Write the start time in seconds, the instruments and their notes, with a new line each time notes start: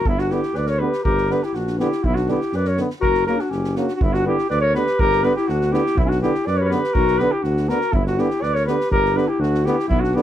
0.04 tuba G1, clarinet B3, flugelhorn E4, kick
0.18 clarinet D4, flugelhorn F#4, snare
0.30 euphonium D3, trombone B3, clarinet E4, flugelhorn G4, snare
0.43 snare
0.54 tuba D2, clarinet B4, flugelhorn D5, snare
0.66 clarinet A#4, flugelhorn C#5, snare
0.79 euphonium D3, trombone B3, clarinet G4, flugelhorn B4
0.93 snare
1.04 tuba G1, clarinet G4, flugelhorn A#4, kick
1.18 snare
1.30 euphonium D3, trombone B3, clarinet G4, flugelhorn B4, snare
1.43 clarinet E4, flugelhorn G4, snare
1.54 tuba A#1, clarinet D4, flugelhorn F#4, snare
1.67 snare
1.79 euphonium D3, trombone B3, clarinet E4, flugelhorn G4, snare
1.92 snare
2.04 tuba B1, clarinet B3, flugelhorn E4, kick
2.15 clarinet D4, flugelhorn F#4, snare
2.28 euphonium D3, trombone B3, clarinet E4, flugelhorn G4, snare
2.41 snare
2.52 tuba F#2, clarinet B4, flugelhorn D5, snare
2.65 clarinet A#4, flugelhorn C#5, snare
2.77 euphonium D3, trombone B3, snare
2.90 snare
3.01 tuba F#1, clarinet F#4, flugelhorn A#4, kick
3.14 snare
3.27 euphonium C#3, trombone A#3, clarinet F#4, flugelhorn A#4, snare
3.36 clarinet D4, snare
3.41 flugelhorn F#4
3.49 tuba F#1, clarinet C#4, flugelhorn G4, snare
3.64 snare
3.76 euphonium C#3, trombone A#3, clarinet D4, flugelhorn F#4, snare
3.88 snare
3.95 clarinet D4, flugelhorn F#4
4.01 tuba G1, clarinet B3, flugelhorn E4, kick
4.14 clarinet D4, flugelhorn F#4, snare
4.25 euphonium D3, trombone B3, clarinet E4, flugelhorn G4
4.38 snare
4.49 tuba D2, clarinet B4, flugelhorn D5, snare
4.61 clarinet A#4, flugelhorn C#5
4.74 euphonium D3, trombone B3, clarinet G4, flugelhorn B4, snare
4.87 snare
4.99 tuba G1, clarinet G4, flugelhorn A#4, kick
5.12 snare
5.23 euphonium D3, trombone B3, clarinet G4, flugelhorn B4, snare
5.35 clarinet E4, flugelhorn G4, snare
5.48 tuba D2, clarinet D4, flugelhorn F#4, snare
5.61 snare
5.72 euphonium D3, trombone B3, clarinet E4, flugelhorn G4, snare
5.86 snare
5.96 tuba B1, flugelhorn E4, kick
6.00 clarinet B3, flugelhorn E4
6.05 clarinet C#4, flugelhorn F#4
6.10 clarinet D4, snare
6.21 euphonium D3, trombone B3, clarinet E4, flugelhorn G4, snare
6.35 snare
6.46 tuba F#2, clarinet B4, flugelhorn D5, snare
6.57 clarinet A#4, flugelhorn C#5
6.61 clarinet G4 A#4, flugelhorn B4 C#5
6.69 euphonium D3, trombone B3, clarinet G4, flugelhorn B4, snare
6.84 snare
6.93 tuba B1, clarinet F#4, flugelhorn A#4, kick
7.07 snare
7.18 euphonium D3, trombone B3, clarinet G4, flugelhorn B4, snare
7.32 clarinet E4, flugelhorn G4
7.42 tuba D2, clarinet D4, flugelhorn F#4, snare
7.57 snare
7.68 euphonium D3, trombone B3, clarinet F#4, flugelhorn A#4, snare
7.81 snare
7.92 tuba G1, clarinet B3, flugelhorn E4, kick
8.05 clarinet D4, flugelhorn F#4, snare
8.18 euphonium D3, trombone B3, clarinet E4, flugelhorn G4, snare
8.30 snare
8.42 tuba D2, clarinet B4, flugelhorn D5, snare
8.54 clarinet A#4, flugelhorn C#5, snare
8.66 euphonium D3, trombone B3, clarinet G4, flugelhorn B4, snare
8.81 snare
8.90 tuba G1, clarinet G4, flugelhorn A#4, kick
9.05 snare
9.16 euphonium D3, trombone B3, clarinet G4, flugelhorn B4, snare
9.27 clarinet E4, flugelhorn G4
9.39 tuba D2, clarinet D4, flugelhorn F#4, snare
9.54 snare
9.64 euphonium D3, trombone B3, clarinet E4, flugelhorn G4, snare
9.80 snare
9.89 tuba B1, clarinet B3, flugelhorn E4, kick
10.00 clarinet D4, flugelhorn F#4, snare
10.15 euphonium D3, trombone B3, clarinet E4, flugelhorn G4, snare